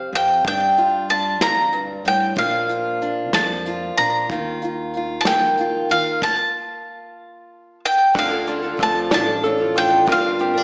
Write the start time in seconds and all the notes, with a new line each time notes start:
Already playing: F2 C4 G4 F5
0.13 F2 G5
0.44 G2 D4 G5, kick, closed hi-hat
0.77 F4, closed hi-hat
1.09 D4 A5, closed hi-hat
1.41 D2 F2 A#5, snare, closed hi-hat
1.73 G2, closed hi-hat
2.05 A2 G3 G5, closed hi-hat
2.36 A#1 A#2 F3 A#3 D4 F5, kick, closed hi-hat
2.40 F4
2.69 F4, closed hi-hat
3.01 D4, closed hi-hat
3.33 F2 F3 A5, snare, closed hi-hat
3.66 F4, closed hi-hat
3.98 A#2 D4 A#5, closed hi-hat
4.30 D#2 D#3 F4, kick, closed hi-hat
4.62 F4, closed hi-hat
4.93 F4, closed hi-hat
5.21 A5
5.25 A#1 A#3 G5, snare
5.57 F4, closed hi-hat
5.89 D#3 F4 F5, closed hi-hat
6.21 A5, kick, crash
7.85 G5
8.14 D2 D3 F3 D4 F4 A4, kick, crash
8.19 F5
8.30 D4 F4 A4
8.47 D4 F4, closed hi-hat
8.62 D4 F4 A4
8.77 F2 F3 A3 D4 F4 A4, kick, closed hi-hat
8.83 A5
9.10 A1 D3 F3 D4 F4 A4 D5, snare, closed hi-hat
9.14 A5
9.25 D4 F4 A4
9.43 A2 F4 A4, closed hi-hat
9.58 D4 F4 A4
9.74 F3 D4 F4 A4 G5, closed hi-hat
10.06 G1 G2 D3 F3 A#3 D4 F4 A#4, kick, closed hi-hat
10.12 F5
10.22 F3 A#3 D4 A#4
10.39 C4 G4, closed hi-hat
10.54 F3 A#3 D4 A#4